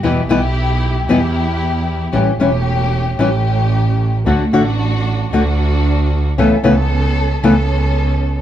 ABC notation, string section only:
X:1
M:4/4
L:1/8
Q:1/4=114
K:Amix
V:1 name="String section"
[B,EG] [B,EG]3 [B,EG]4 | [A,CG] [A,CG]3 [A,CG]4 | [A,DF] [A,DF]3 [A,DF]4 | [B,CA] [B,CA]3 [B,CA]4 |]